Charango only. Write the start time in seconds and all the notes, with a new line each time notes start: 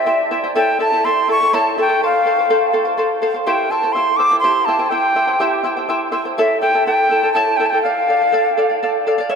0.06 E4 C5 E5 G5
0.31 E4 C5 E5 G5
0.44 E4 C5 G5
0.55 E4 A4 C#5 E5 A5
0.79 E4 A4 E5 A5
0.92 E4 A4 A5
1.05 E4 A4 E5 A5
1.28 E4 A4 E5 A5
1.41 E4 A4 A5
1.53 E4 A4 C#5 E5 A5
1.78 E4 A4 E5 A5
1.89 E4 A4 A5
2.02 A4 C5 F5
2.25 A4 C5 F5
2.39 C5 F5
2.50 A4 C5 F5
2.73 A4 C5 F5
2.85 C5 F5
2.97 A4 C5 F5
3.22 A4 C5 F5
3.34 C5 F5
3.46 E4 G4 C5 E5 G5
3.71 E4 C5 E5 G5
3.83 E4 C5 G5
3.95 E4 C5 E5 G5
4.19 E4 C5 E5 G5
4.31 E4 C5 G5
4.44 E4 G4 C5 E5 G5
4.68 E4 C5 E5 G5
4.79 E4 C5 G5
4.91 E4 C5 E5 G5
5.16 E4 C5 E5 G5
5.27 E4 C5 G5
5.40 E4 G4 C5 E5 G5
5.63 E4 C5 E5 G5
5.77 E4 C5 G5
5.89 E4 C5 E5 G5
6.12 E4 C5 E5 G5
6.25 E4 C5 G5
6.38 E4 A4 C#5 E5 A5
6.62 E4 A4 E5 A5
6.74 E4 A4 A5
6.86 E4 A4 E5 A5
7.10 E4 A4 E5 A5
7.23 E4 A4 A5
7.35 E4 A4 C#5 E5 A5
7.60 E4 A4 E5 A5
7.73 E4 A4 A5
7.85 A4 D5 F5
8.08 A4 D5 F5
8.22 D5 F5
8.32 A4 D5 F5
8.57 A4 D5 F5
8.69 D5 F5
8.83 A4 D5 F5
9.07 A4 D5 F5
9.18 D5 F5
9.30 C#5 E5